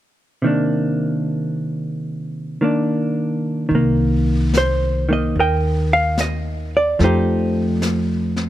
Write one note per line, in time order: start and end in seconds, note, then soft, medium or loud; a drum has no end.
0.42 3.71 C3 soft
0.42 2.60 D#3 soft
0.42 2.61 A#3 soft
0.47 2.63 D4 soft
2.61 3.68 D#3 soft
2.61 3.71 A#3 soft
2.61 3.72 D4 soft
3.69 5.31 C2 medium
3.69 5.07 D#3 soft
3.69 brush sweep soft
3.75 5.09 A#3 soft
4.54 snare soft
4.54 hi-hat pedal soft
4.58 5.07 C5 medium
5.09 6.99 D#3 soft
5.09 5.39 A#3 soft
5.13 5.38 D#5 medium
5.35 6.95 D#2 medium
5.35 brush sweep soft
5.39 6.97 A#4 soft
5.39 6.19 D#5 soft
5.39 5.93 G5 medium
5.93 6.20 F5 medium
6.18 6.70 D#5 medium
6.18 snare soft
6.18 hi-hat pedal soft
6.77 7.00 D5 medium
6.99 8.49 F2 medium
6.99 8.49 F3 soft
6.99 8.49 A3 soft
6.99 8.49 D#4 soft
6.99 brush sweep soft
6.99 snare soft
7.04 8.49 G4 soft
7.04 8.49 C5 medium
7.82 snare soft
7.82 hi-hat pedal soft
8.36 snare soft